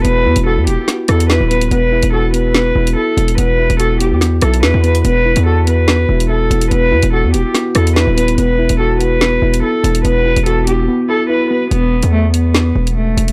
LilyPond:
<<
  \new Staff \with { instrumentName = "Cello" } { \time 4/4 \key c \lydian \tempo 4 = 144 b'4 a'8 g'8 r8 a'8 b'8 b'8 | b'4 a'8 b'4. a'4 | b'4 a'8 g'8 r8 a'8 b'8 b'8 | b'4 a'8 b'4. a'4 |
b'4 a'8 g'8 r8 a'8 b'8 b'8 | b'4 a'8 b'4. a'4 | b'4 a'8 g'8 r8 a'8 b'8 b'8 | b4 a8 b4. a4 | }
  \new Staff \with { instrumentName = "Synth keys" } { \time 4/4 \key c \lydian <b e'>8 e'8 fis'8 b8 b8 e'8 e'8 b8 | b8 e'8 fis'8 b8 b8 e'8 e'8 b8 | b8 e'8 fis'8 b8 b8 e'8 e'8 b8 | b8 e'8 fis'8 b8 b8 e'8 e'8 b8 |
b8 e'8 fis'8 b8 b8 e'8 e'8 b8 | b8 e'8 fis'8 b8 b8 e'8 e'8 b8 | b8 e'8 fis'8 b8 b8 e'8 e'8 b8 | r1 | }
  \new Staff \with { instrumentName = "808-style bass" } { \clef bass \time 4/4 \key c \lydian e,,8 e,16 e,,8 e,16 e,,16 r8. e,8. dis,,8. | e,,8. e,,4.~ e,,16 e,,8 r8 e,,8 | e,,8. e,,4 e,8. b,,8 e,16 e,8. | e,,8. e,4.~ e,16 e,,4 e,,8 |
e,,8 e,16 e,,8 e,16 e,,16 r8. e,8. dis,,8. | e,,8. e,,4.~ e,,16 e,,8 r8 e,,8 | e,,8. e,,4~ e,,16 r2 | e,,8. e,4.~ e,16 e,,4 e,,8 | }
  \new DrumStaff \with { instrumentName = "Drums" } \drummode { \time 4/4 hh8. hh16 r8 hh8 <hh sn>8 <hh ss>16 hh16 sn8 hh16 hh16 | hh8. hh16 r8 hh8 sn8. hh16 r8 hh16 hh16 | hh8. hh16 hh8 hh8 <hh sn>8 <hh ss>16 hh16 sn8 hh16 hh16 | hh8. hh16 r8 hh8 sn8. hh16 r8 hh16 hh16 |
hh8. hh16 r8 hh8 <hh sn>8 <hh ss>16 hh16 sn8 hh16 hh16 | hh8. hh16 r8 hh8 sn8. hh16 r8 hh16 hh16 | hh8. hh16 hh8 hh8 r4 r4 | hh8. hh16 r8 hh8 sn8. hh16 r8 hh16 hh16 | }
>>